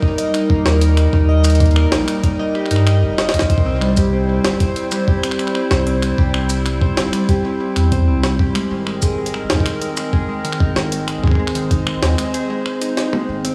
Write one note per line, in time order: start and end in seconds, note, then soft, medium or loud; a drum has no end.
0.00 3.46 G3 medium
0.00 3.46 D#4 medium
0.00 0.18 D#4 loud
0.00 3.46 A#4 medium
0.00 kick loud
0.18 0.33 D#5 medium
0.18 closed hi-hat medium
0.34 0.48 D#4 loud
0.34 finger snap medium
0.34 closed hi-hat medium
0.50 0.58 A#3 loud
0.50 kick loud
0.66 1.07 D#2 loud
0.66 0.79 A#4 loud
0.66 snare loud
0.81 0.95 D#4 medium
0.81 closed hi-hat medium
0.97 1.11 D#4 medium
0.97 finger snap medium
0.97 closed hi-hat medium
1.13 1.86 D#2 loud
1.13 1.28 D#4 loud
1.13 kick loud
1.29 1.44 D#5 medium
1.45 1.58 D#4 loud
1.45 finger snap medium
1.45 closed hi-hat medium
1.45 shaker medium
1.50 closed hi-hat medium
1.55 closed hi-hat soft
1.60 1.69 A#3 loud
1.60 kick loud
1.60 closed hi-hat medium
1.66 closed hi-hat soft
1.71 closed hi-hat soft
1.76 1.90 A#4 loud
1.76 finger snap medium
1.92 2.04 A#1 loud
1.92 2.06 D#4 medium
1.92 snare loud
2.08 2.22 D#4 medium
2.08 finger snap medium
2.08 closed hi-hat medium
2.24 2.39 D#4 loud
2.24 kick loud
2.24 closed hi-hat medium
2.39 2.54 D#5 medium
2.55 2.69 G4 loud
2.55 finger snap soft
2.66 finger snap soft
2.71 3.04 G2 loud
2.71 2.85 D#4 loud
2.71 closed hi-hat medium
2.76 finger snap soft
2.87 3.00 D#5 medium
2.87 finger snap medium
2.87 closed hi-hat medium
3.03 3.15 D#1 medium
3.03 3.16 D#4 medium
3.18 3.30 D#1 loud
3.18 3.33 D#5 medium
3.18 finger snap medium
3.18 snare loud
3.29 snare loud
3.34 3.48 D#4 medium
3.34 kick medium
3.34 closed hi-hat medium
3.39 kick medium
3.39 snare medium
3.50 8.51 G3 medium
3.50 8.51 E4 medium
3.50 8.51 C5 medium
3.50 3.65 C5 medium
3.50 kick loud
3.50 closed hi-hat medium
3.58 kick medium
3.66 4.39 C2 loud
3.66 3.79 C4 loud
3.81 3.90 G3 loud
3.81 finger snap medium
3.97 4.11 G4 loud
3.97 kick loud
3.97 closed hi-hat medium
3.97 shaker medium
4.13 4.27 C4 medium
4.29 4.43 C4 medium
4.45 4.57 G1 loud
4.45 4.60 C4 loud
4.45 finger snap medium
4.45 snare loud
4.60 4.75 C5 medium
4.60 kick loud
4.60 closed hi-hat medium
4.76 4.90 C4 loud
4.76 closed hi-hat medium
4.92 5.00 G3 loud
4.92 finger snap soft
4.92 shaker medium
5.08 5.22 G4 loud
5.08 kick loud
5.23 5.37 C4 medium
5.23 finger snap medium
5.23 closed hi-hat medium
5.31 finger snap medium
5.39 5.53 C4 medium
5.39 finger snap soft
5.39 closed hi-hat medium
5.47 finger snap soft
5.55 5.70 C4 loud
5.55 finger snap medium
5.71 6.12 C2 loud
5.71 5.86 C5 medium
5.71 kick loud
5.71 snare loud
5.87 6.00 C4 loud
5.87 closed hi-hat medium
6.02 6.11 G3 loud
6.02 finger snap medium
6.02 closed hi-hat medium
6.18 6.91 C2 loud
6.18 6.32 G4 loud
6.18 kick loud
6.34 6.48 C4 medium
6.34 finger snap medium
6.50 6.64 C4 medium
6.50 closed hi-hat medium
6.50 shaker medium
6.66 6.81 C4 loud
6.66 finger snap medium
6.66 closed hi-hat soft
6.81 6.97 C5 medium
6.81 kick loud
6.97 7.09 G1 loud
6.97 7.11 C4 loud
6.97 snare loud
7.13 7.21 G3 loud
7.13 finger snap medium
7.13 closed hi-hat medium
7.29 7.43 G4 loud
7.29 kick loud
7.29 closed hi-hat medium
7.45 7.58 C4 medium
7.61 7.74 C4 medium
7.76 8.09 E2 loud
7.76 7.91 C4 loud
7.76 finger snap medium
7.76 closed hi-hat medium
7.92 8.07 C5 medium
7.92 kick loud
7.92 closed hi-hat medium
8.08 8.49 C2 loud
8.08 8.22 C4 loud
8.23 8.32 G3 loud
8.23 finger snap medium
8.23 snare loud
8.39 8.53 G4 loud
8.39 kick loud
8.55 8.69 G#3 medium
8.55 13.55 G#3 medium
8.55 13.55 C4 medium
8.55 11.05 A#4 medium
8.55 finger snap medium
8.55 closed hi-hat medium
8.71 9.44 G#1 loud
8.71 8.85 G#3 medium
8.87 9.02 G#3 loud
8.87 finger snap medium
9.02 9.18 G#4 medium
9.02 kick loud
9.02 closed hi-hat medium
9.02 shaker medium
9.18 9.32 G#3 loud
9.26 closed hi-hat medium
9.34 9.42 D#3 loud
9.34 finger snap medium
9.50 9.62 D#2 loud
9.50 9.64 D#4 loud
9.50 kick medium
9.50 snare loud
9.55 kick medium
9.60 kick medium
9.66 9.79 G#3 medium
9.66 finger snap medium
9.66 closed hi-hat medium
9.81 9.95 G#3 medium
9.81 closed hi-hat medium
9.97 10.12 G#3 loud
9.97 finger snap medium
9.97 shaker medium
10.13 10.28 G#4 medium
10.13 kick loud
10.29 10.43 G#3 loud
10.45 10.53 D#3 loud
10.45 closed hi-hat soft
10.53 finger snap medium
10.60 10.74 D#4 loud
10.60 kick loud
10.76 11.18 G#1 loud
10.76 10.90 G#3 medium
10.76 snare loud
10.92 11.06 G#3 medium
10.92 closed hi-hat medium
11.08 11.23 G#3 loud
11.08 13.55 C5 medium
11.08 finger snap medium
11.08 closed hi-hat medium
11.24 11.97 G#1 loud
11.24 11.39 G#4 medium
11.24 kick loud
11.28 kick medium
11.31 kick medium
11.35 11.53 G#3 loud
11.35 kick medium
11.47 finger snap medium
11.55 11.63 D#3 loud
11.55 closed hi-hat medium
11.71 11.85 D#4 loud
11.71 kick loud
11.71 closed hi-hat medium
11.87 12.00 G#3 medium
11.87 finger snap medium
12.02 12.15 D#2 loud
12.02 12.16 G#3 medium
12.02 snare loud
12.18 12.33 G#3 loud
12.18 finger snap medium
12.18 closed hi-hat medium
12.34 12.49 G#4 medium
12.34 closed hi-hat medium
12.50 12.64 G#3 loud
12.66 12.74 G#3 medium
12.66 finger snap medium
12.81 12.95 D#4 medium
12.81 closed hi-hat medium
12.97 13.11 D#4 medium
12.97 snare medium
12.97 closed hi-hat medium
13.13 13.28 G#3 loud
13.13 high tom medium
13.29 13.53 G#1 loud
13.29 13.44 D#3 medium
13.45 13.53 C4 loud
13.45 closed hi-hat medium